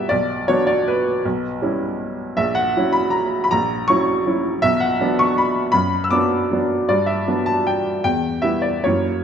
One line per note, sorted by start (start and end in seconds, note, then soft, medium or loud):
0.00 0.13 B2 soft
0.00 0.13 G3 soft
0.00 0.13 B3 soft
0.00 0.13 G4 soft
0.00 0.13 E5 medium
0.00 0.12 G5 medium
0.09 0.47 B1 medium
0.09 0.47 D5 medium
0.48 1.21 F#3 soft
0.48 1.21 B3 soft
0.48 1.21 D4 soft
0.48 0.67 C#5 medium
0.67 0.86 D5 medium
0.88 2.20 B4 medium
1.25 1.61 B1 medium
1.62 2.33 G3 soft
1.62 2.33 C#4 soft
1.62 2.34 E4 soft
2.37 2.73 A#1 medium
2.37 2.55 E5 medium
2.55 2.93 F#5 medium
2.76 3.48 F#3 soft
2.76 3.48 C#4 soft
2.76 3.48 E4 soft
2.92 3.12 B5 medium
3.10 3.43 A#5 medium
3.44 3.50 B5 medium
3.51 3.87 A#1 medium
3.51 3.87 A#5 medium
3.88 4.22 F#3 soft
3.88 4.22 C#4 soft
3.88 4.22 E4 soft
3.88 4.62 C#6 medium
4.26 4.59 F#3 soft
4.26 4.59 C#4 soft
4.26 4.59 E4 soft
4.62 4.98 B1 medium
4.62 4.80 E5 loud
4.80 5.18 F#5 medium
5.00 5.70 F#3 soft
5.00 5.71 B3 soft
5.00 5.70 D4 soft
5.19 5.37 C#6 medium
5.38 5.70 B5 medium
5.72 6.10 F#2 medium
5.72 6.03 B5 medium
6.04 6.11 E6 medium
6.11 6.47 F#3 soft
6.11 6.47 B3 soft
6.11 6.47 D4 soft
6.11 6.89 D6 medium
6.51 6.86 F#3 soft
6.51 6.86 B3 soft
6.51 6.86 D4 soft
6.89 7.25 G2 medium
6.89 7.07 D5 medium
7.06 7.45 E5 medium
7.28 8.01 F#3 soft
7.28 8.01 B3 soft
7.28 8.01 D4 soft
7.46 7.66 A5 medium
7.67 8.03 G5 medium
8.04 8.42 E2 soft
8.04 8.43 G5 medium
8.42 8.80 G3 soft
8.42 8.80 B3 soft
8.42 8.81 E4 soft
8.42 8.63 E5 medium
8.62 8.83 D5 medium
8.84 9.24 F#2 soft
8.84 9.24 F#3 soft
8.84 9.24 A#3 soft
8.84 9.24 E4 soft
8.84 9.24 C#5 medium